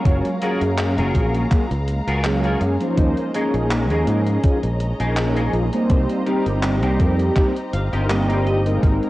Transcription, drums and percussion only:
0.05 kick, closed hi-hat
0.25 closed hi-hat
0.42 closed hi-hat
0.61 closed hi-hat
0.78 clap, closed hi-hat
0.98 closed hi-hat
1.15 kick, closed hi-hat
1.34 closed hi-hat
1.51 kick, clap, closed hi-hat
1.71 closed hi-hat
1.88 closed hi-hat
2.08 closed hi-hat
2.24 clap, closed hi-hat
2.44 closed hi-hat
2.61 closed hi-hat
2.81 closed hi-hat
2.97 kick, closed hi-hat
3.17 closed hi-hat
3.34 closed hi-hat
3.54 closed hi-hat
3.71 clap, closed hi-hat
3.90 closed hi-hat
4.07 closed hi-hat
4.26 closed hi-hat
4.44 kick, closed hi-hat
4.63 closed hi-hat
4.80 closed hi-hat
5.00 closed hi-hat
5.17 clap, closed hi-hat
5.37 closed hi-hat
5.54 closed hi-hat
5.73 closed hi-hat
5.90 kick, closed hi-hat
6.10 closed hi-hat
6.27 closed hi-hat
6.46 closed hi-hat
6.63 clap, closed hi-hat
6.83 closed hi-hat
7.00 kick, closed hi-hat
7.19 closed hi-hat
7.36 kick, clap, closed hi-hat
7.56 closed hi-hat
7.73 closed hi-hat
7.93 closed hi-hat
8.10 clap, closed hi-hat
8.30 closed hi-hat
8.47 closed hi-hat
8.66 closed hi-hat
8.83 kick, closed hi-hat
9.03 closed hi-hat

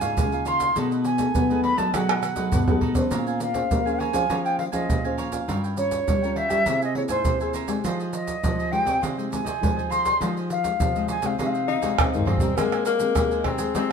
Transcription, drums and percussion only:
0.01 pandeiro, maracas, surdo
0.17 pandeiro, maracas, surdo
0.32 pandeiro, maracas
0.46 pandeiro, maracas
0.60 pandeiro, maracas, surdo
0.76 pandeiro, maracas, surdo
0.92 pandeiro, maracas
1.05 pandeiro, maracas
1.18 pandeiro, maracas, surdo
1.35 pandeiro, maracas, surdo
1.50 pandeiro, maracas
1.64 pandeiro
1.78 pandeiro, maracas, surdo
1.94 pandeiro, tamborim, maracas, surdo
2.09 pandeiro, tamborim, maracas
2.23 pandeiro, tamborim, maracas
2.36 pandeiro, maracas, surdo
2.52 surdo, pandeiro, maracas
2.68 pandeiro, maracas, surdo
2.81 pandeiro, surdo
2.95 pandeiro, maracas, surdo
3.11 pandeiro, maracas, surdo
3.27 pandeiro, maracas
3.40 pandeiro, maracas
3.54 pandeiro, maracas, surdo
3.71 pandeiro, maracas, surdo
3.87 pandeiro, maracas
4.00 pandeiro
4.14 pandeiro, maracas, surdo
4.30 pandeiro, maracas, surdo
4.46 pandeiro, maracas
4.59 pandeiro
4.73 pandeiro, maracas, surdo
4.90 pandeiro, maracas, surdo
5.05 pandeiro, maracas
5.18 pandeiro, maracas
5.32 pandeiro, maracas, surdo
5.49 pandeiro, maracas, surdo
5.64 pandeiro, maracas
5.77 pandeiro, maracas
5.91 pandeiro, maracas, surdo
6.08 pandeiro, maracas, surdo
6.24 pandeiro, maracas
6.36 pandeiro
6.50 pandeiro, maracas, surdo
6.66 pandeiro, maracas, surdo
6.82 pandeiro, maracas
6.95 pandeiro
7.09 pandeiro, maracas, surdo
7.25 pandeiro, maracas, surdo
7.40 pandeiro, maracas
7.54 pandeiro, maracas
7.68 pandeiro, maracas, surdo
7.84 pandeiro, maracas, surdo
8.00 pandeiro, maracas
8.13 pandeiro, maracas
8.27 pandeiro, maracas, surdo
8.44 pandeiro, maracas, surdo
8.60 pandeiro, maracas
8.73 pandeiro
8.87 pandeiro, maracas, surdo
9.03 pandeiro, maracas, surdo
9.19 pandeiro, maracas
9.33 pandeiro, maracas, surdo
9.47 pandeiro, maracas, surdo
9.63 pandeiro, maracas, surdo
9.79 pandeiro, maracas
9.92 pandeiro, maracas
10.06 pandeiro, maracas, surdo
10.21 pandeiro, maracas, surdo
10.37 pandeiro, maracas
10.50 pandeiro, maracas
10.64 pandeiro, maracas, surdo
10.80 pandeiro, maracas, surdo
10.96 pandeiro, maracas
11.08 pandeiro, maracas
11.22 pandeiro, maracas, surdo
11.39 pandeiro, maracas, surdo
11.55 pandeiro, maracas
11.69 pandeiro
11.82 pandeiro, maracas, surdo
11.99 pandeiro, tamborim, maracas, surdo
12.14 pandeiro, maracas
12.18 surdo
12.27 surdo, pandeiro
12.38 pandeiro, maracas, surdo
12.40 surdo
12.47 surdo
12.58 pandeiro, tamborim, maracas, surdo
12.72 pandeiro, tamborim, maracas
12.85 pandeiro, maracas
13.00 pandeiro, maracas
13.16 pandeiro, tamborim, maracas, surdo
13.31 pandeiro, maracas
13.44 pandeiro, tamborim, surdo
13.58 pandeiro, maracas
13.75 pandeiro, maracas, surdo

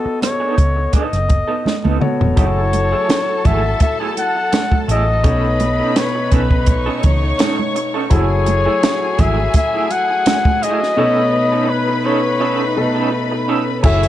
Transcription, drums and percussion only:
0.22 cross-stick, closed hi-hat, high conga
0.58 kick, closed hi-hat, muted conga
0.93 kick, closed hi-hat, muted conga
1.13 cross-stick, closed hi-hat
1.30 kick, closed hi-hat, muted conga
1.66 snare, high conga
1.84 high tom, high conga
2.01 mid tom
2.21 floor tom
2.37 kick, closed hi-hat
2.73 closed hi-hat, muted conga
3.09 snare, closed hi-hat, high conga
3.45 kick, closed hi-hat, muted conga, low conga
3.80 kick, closed hi-hat, muted conga
4.17 closed hi-hat, muted conga
4.53 snare, closed hi-hat, high conga
4.71 kick, high conga
4.89 closed hi-hat
5.24 kick, closed hi-hat
5.60 closed hi-hat, muted conga
5.96 snare, closed hi-hat, high conga
6.32 kick, closed hi-hat, muted conga
6.51 kick
6.66 kick, closed hi-hat, muted conga
7.03 kick, closed hi-hat, muted conga, low conga
7.39 snare, closed hi-hat, high conga
7.59 high conga
7.76 closed hi-hat
8.11 kick, closed hi-hat
8.46 closed hi-hat, muted conga
8.83 snare, closed hi-hat, high conga
9.19 kick, closed hi-hat, muted conga, low conga
9.54 kick, closed hi-hat, muted conga
9.91 closed hi-hat, muted conga
10.26 snare, closed hi-hat, high conga
10.45 kick, high conga
10.63 closed hi-hat
10.83 snare
13.84 kick, crash
14.03 closed hi-hat

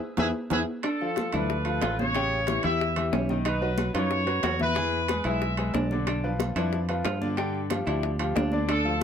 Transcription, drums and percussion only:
0.17 low bongo, high conga, high timbale
0.50 low bongo, high conga, high timbale
0.83 high bongo, high conga, high timbale
1.01 high conga
1.16 high bongo, high conga, high timbale, low timbale
1.32 high bongo, low conga, high timbale
1.50 high bongo, high conga
1.65 high bongo, high conga, high timbale
1.82 high bongo, low bongo, high conga, high timbale, low timbale
1.99 high bongo, high conga
2.15 high bongo, high timbale
2.32 high conga
2.47 high bongo, high conga, high timbale, low timbale
2.63 high bongo, high conga, high timbale
2.80 high bongo, high conga
2.96 high bongo, high conga, high timbale
3.13 high bongo, low bongo, high conga, low timbale
3.29 high bongo, high conga
3.45 high bongo, high timbale
3.62 high conga
3.78 high bongo, high conga, high timbale, low timbale
3.94 high bongo, low conga, high timbale
4.10 high bongo, high conga
4.27 high bongo, high conga, high timbale
4.43 high bongo, low bongo, high conga, high timbale, low timbale
4.59 high bongo, high conga
4.75 high bongo, high timbale
4.93 high conga
5.08 high bongo, high conga, high timbale, low timbale
5.24 high bongo, high conga, high timbale
5.42 high bongo, high conga
5.57 high bongo, high conga, high timbale
5.74 high bongo, low bongo, high conga, low timbale
5.91 high bongo, high conga
6.07 high bongo, high conga, high timbale
6.24 high conga
6.40 high bongo, high conga, high timbale, low timbale
6.56 high bongo, low conga, high timbale
6.73 high bongo, high conga
6.89 high bongo, high conga, high timbale
7.05 high bongo, low bongo, high conga, high timbale, low timbale
7.22 high bongo, high conga
7.37 high bongo, high conga, high timbale
7.55 high conga
7.70 high bongo, high conga, high timbale, low timbale
7.86 high bongo, high conga, high timbale
8.03 high bongo, high conga
8.19 high bongo, high conga, high timbale
8.36 high bongo, low bongo, high conga, low timbale
8.52 high bongo, high conga
8.69 high bongo, high conga, high timbale
8.85 high conga

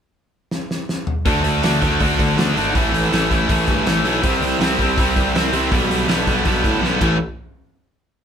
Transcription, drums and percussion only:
0.51 snare
0.71 snare
0.89 snare
1.07 mid tom
1.26 kick, open hi-hat
1.44 open hi-hat
1.63 snare, open hi-hat
1.82 kick, open hi-hat
2.00 kick, open hi-hat
2.19 kick, open hi-hat
2.38 snare, open hi-hat
2.57 open hi-hat
2.75 kick, open hi-hat
2.94 open hi-hat
3.13 snare, open hi-hat
3.31 kick, open hi-hat
3.49 kick, open hi-hat
3.68 kick, open hi-hat
3.86 snare, open hi-hat
4.05 open hi-hat
4.23 kick, open hi-hat
4.42 open hi-hat
4.61 snare, open hi-hat
4.79 kick, open hi-hat
4.98 kick, open hi-hat
5.16 kick, open hi-hat
5.35 snare, open hi-hat
5.53 open hi-hat
5.72 kick, open hi-hat
5.91 open hi-hat
6.09 snare, open hi-hat
6.27 kick, open hi-hat
6.45 kick, open hi-hat
6.64 kick, open hi-hat
6.84 snare
7.01 kick, crash

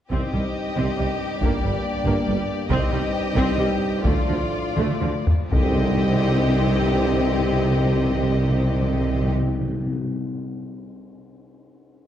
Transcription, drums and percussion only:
0.12 taiko
0.77 taiko
1.41 taiko
2.06 taiko
2.70 taiko
3.36 taiko
4.04 taiko
4.77 taiko mid
5.02 taiko high
5.27 taiko low
5.52 taiko, tam-tam

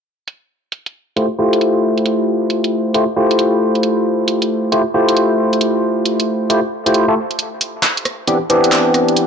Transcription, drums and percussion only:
0.28 closed hi-hat
0.72 closed hi-hat
0.86 closed hi-hat
1.17 closed hi-hat
1.53 closed hi-hat
1.61 closed hi-hat
1.98 closed hi-hat
2.06 closed hi-hat
2.50 closed hi-hat
2.64 closed hi-hat
2.94 closed hi-hat
3.31 closed hi-hat
3.39 closed hi-hat
3.75 closed hi-hat
3.83 closed hi-hat
4.28 closed hi-hat
4.42 closed hi-hat
4.72 closed hi-hat
5.09 closed hi-hat
5.17 closed hi-hat
5.53 closed hi-hat
5.61 closed hi-hat
6.06 closed hi-hat
6.20 closed hi-hat
6.50 closed hi-hat
6.86 closed hi-hat
6.94 closed hi-hat
7.31 closed hi-hat
7.39 closed hi-hat
7.61 open hi-hat
7.83 clap, closed hi-hat
7.97 closed hi-hat
8.05 cross-stick, open hi-hat
8.27 closed hi-hat
8.50 open hi-hat
8.64 closed hi-hat
8.72 clap, closed hi-hat
8.94 cross-stick, open hi-hat
9.08 closed hi-hat
9.17 closed hi-hat

